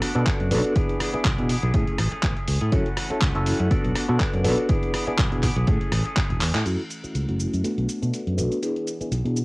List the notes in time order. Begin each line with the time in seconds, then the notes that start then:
Already playing: B3 D4 F#4 A4
0.01 A3 D4 F#4, cross-stick, open hi-hat
0.15 B2 B3 D4 F#4 A4, closed hi-hat
0.26 A3 D4 F#4, kick, clap, closed hi-hat
0.40 F#2 D4 F#4, closed hi-hat
0.51 B1 B3 D4 F#4 A4, open hi-hat
0.64 D4 F#4, closed hi-hat
0.75 E3 B3 D4 G#4, kick, closed hi-hat
0.89 closed hi-hat
1.00 E3 B3 D4 G#4, cross-stick, open hi-hat
1.13 B3 D4 E4 G#4, muted fingered electric bass stroke, closed hi-hat
1.25 B1 E3 B3 D4 G#4, kick, clap, closed hi-hat
1.38 B2 B3 D4 E4 G#4, closed hi-hat
1.49 E3 B3 D4 G#4, open hi-hat
1.62 B1 B3 D4 G#4
1.74 A2 E3 A3 C#4 E4 G#4, kick, closed hi-hat
1.87 A3 C#4 G#4, closed hi-hat
1.98 A1 E3 A3 C#4 G#4, cross-stick, open hi-hat
2.12 A3 C#4 G#4, muted fingered electric bass stroke, closed hi-hat
2.23 A1 A3 C#4 G#4, kick, clap, closed hi-hat
2.37 A3 C#4 G#4, closed hi-hat
2.48 C#2, open hi-hat
2.61 A2 A3 C#4 G#4, closed hi-hat
2.72 F#2 E3 A3 C#4 E4 F#4 A4, kick, closed hi-hat
2.86 closed hi-hat
2.97 E3 A3 C#4 F#4, cross-stick, open hi-hat
3.10 A3 C#4 E4 F#4 A4, muted fingered electric bass stroke, closed hi-hat
3.21 C#2 E3 A3 C#4 F#4, kick, clap, closed hi-hat
3.35 F#1 C#4 E4 F#4 A4, closed hi-hat
3.46 E3 A3 C#4 F#4, open hi-hat
3.59 F#2 A3 C#4 F#4, closed hi-hat
3.70 A3 B3 D4 F#4 A4, muted fingered electric bass stroke, kick, closed hi-hat
3.84 B1 D4 F#4, closed hi-hat
3.95 A3 D4 F#4, cross-stick, open hi-hat
4.08 B2 B3 D4 F#4 A4, closed hi-hat
4.20 A3 D4 F#4, kick, clap, closed hi-hat
4.33 F#2 D4 F#4, closed hi-hat
4.44 B1 B3 D4 F#4 A4, open hi-hat
4.58 D4 F#4
4.69 E3 B3 D4 E4 G#4, kick, closed hi-hat
4.83 closed hi-hat
4.93 E3 B3 D4 G#4, cross-stick, open hi-hat
5.07 B3 D4 E4 G#4, muted fingered electric bass stroke, closed hi-hat
5.18 B1 E3 B3 D4 G#4, kick, clap, closed hi-hat
5.32 B2 B3 D4 E4 G#4, closed hi-hat
5.42 E3 B3 D4 G#4, kick, clap, open hi-hat
5.56 B1 B3 D4 G#4, closed hi-hat
5.67 A2 E3 A3 C#4 E4 G#4, kick, closed hi-hat
5.80 A3 C#4 G#4, closed hi-hat
5.91 A1 E3 A3 C#4 G#4, cross-stick, open hi-hat
6.05 A3 C#4 G#4, closed hi-hat
6.17 A3 C#4 G#4, kick, clap, closed hi-hat
6.30 E1 A3 C#4 G#4, closed hi-hat
6.41 E2, clap, open hi-hat
6.55 A2, clap, closed hi-hat
6.65 F#2 E3 A3 C#4 E4 F#4, closed hi-hat, crash, shaker
6.79 closed hi-hat
6.90 closed hi-hat, shaker
7.04 A3 C#4 E4 F#4, muted fingered electric bass stroke, closed hi-hat, shaker
7.14 C#2 E3 A3 C#4 F#4, closed hi-hat, shaker
7.28 F#1 A3 C#4 E4 F#4, closed hi-hat
7.40 closed hi-hat, shaker
7.53 F#2, closed hi-hat, shaker
7.64 A3 B3 D4 F#4, muted fingered electric bass stroke, closed hi-hat, shaker
7.78 B1, closed hi-hat
7.89 closed hi-hat, shaker
8.02 B2 A3 B3 D4 F#4, closed hi-hat, shaker
8.14 closed hi-hat, shaker
8.27 F#2, closed hi-hat
8.37 B1 A3 B3 D4 F#4, closed hi-hat, shaker
8.52 closed hi-hat, shaker
8.62 E3 B3 D4 E4 G#4, closed hi-hat, shaker
8.76 closed hi-hat
8.87 closed hi-hat, shaker
9.01 B3 D4 E4 G#4, muted fingered electric bass stroke, closed hi-hat, shaker
9.11 B1 E3 B3 D4 G#4, closed hi-hat, shaker
9.25 B2 B3 D4 E4 G#4, closed hi-hat
9.36 closed hi-hat, shaker